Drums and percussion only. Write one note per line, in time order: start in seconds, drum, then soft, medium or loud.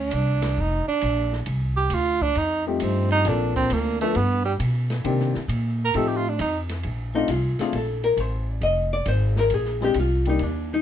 0.11 hi-hat pedal medium
0.11 ride medium
0.42 snare medium
0.42 ride medium
1.01 hi-hat pedal medium
1.01 ride medium
1.32 snare soft
1.46 ride medium
1.90 hi-hat pedal medium
1.90 ride medium
2.21 kick medium
2.35 ride medium
2.80 hi-hat pedal medium
2.80 ride medium
3.11 ride soft
3.25 snare soft
3.25 ride medium
3.56 kick medium
3.56 ride soft
3.70 hi-hat pedal medium
3.70 ride medium
4.01 ride medium
4.15 ride medium
4.60 hi-hat pedal medium
4.60 ride medium
4.90 snare medium
4.90 ride soft
5.05 ride medium
5.20 snare soft
5.35 snare soft
5.49 hi-hat pedal medium
5.49 ride medium
5.94 ride medium
6.39 hi-hat pedal medium
6.39 ride medium
6.69 snare soft
6.69 ride medium
6.83 ride medium
7.28 hi-hat pedal medium
7.28 ride medium
7.59 snare soft
7.59 ride soft
7.73 ride medium
8.04 ride soft
8.17 hi-hat pedal medium
8.17 ride medium
8.61 ride medium
9.06 hi-hat pedal medium
9.06 ride medium
9.36 snare soft
9.50 ride medium
9.65 snare soft
9.81 snare soft
9.94 hi-hat pedal medium
9.94 ride medium
10.25 ride soft
10.39 ride medium